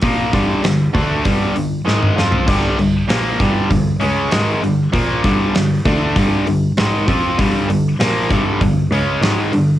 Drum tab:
CC |----------------|x---------------|----------------|----------------|
HH |o-o-o-o-o-o-----|o-o-o-o-o-o-o-o-|o-o-o-o-o-o-o-o-|o-o-o-o-o-o-o-o-|
SD |----o-------o-o-|----o-------o---|----o-------o---|----o-------o---|
T2 |-------------o--|----------------|----------------|----------------|
FT |---------------o|----------------|----------------|----------------|
BD |o-o---o-o-------|o-----o-o-------|o-o---o-o-----o-|o-----o-o-------|